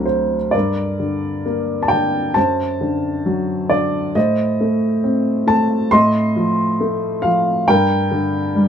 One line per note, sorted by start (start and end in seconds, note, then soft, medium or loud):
0.00 0.50 D2 soft
0.00 0.36 F#3 soft
0.00 0.36 C4 soft
0.00 0.55 D4 soft
0.00 0.54 A#4 medium
0.06 0.50 C5 medium
0.51 2.33 G2 soft
0.51 2.33 A#4 soft
0.51 1.87 D5 medium
1.00 1.91 D3 soft
1.46 2.34 A#3 soft
1.83 1.90 A5 medium
1.88 2.36 G5 medium
1.92 2.36 D3 soft
2.34 4.12 F#2 soft
2.34 4.12 C5 medium
2.34 3.74 A5 medium
2.81 3.69 D3 soft
3.26 4.13 F#3 soft
3.69 4.14 D3 soft
3.69 4.16 D5 medium
4.15 5.88 A2 soft
4.15 5.89 C5 soft
4.15 5.53 D#5 medium
4.61 5.46 A3 soft
5.04 5.90 C4 soft
5.47 5.91 A3 soft
5.47 5.89 A5 medium
5.91 7.63 A2 medium
5.91 7.64 D#5 medium
5.91 7.27 C6 medium
6.36 7.23 F3 soft
6.81 7.65 A3 medium
7.22 7.67 F3 soft
7.22 7.68 F5 medium
7.68 8.68 G2 medium
7.68 8.68 A#4 medium
7.68 8.68 G5 medium
8.11 8.68 D3 soft
8.55 8.68 G3 soft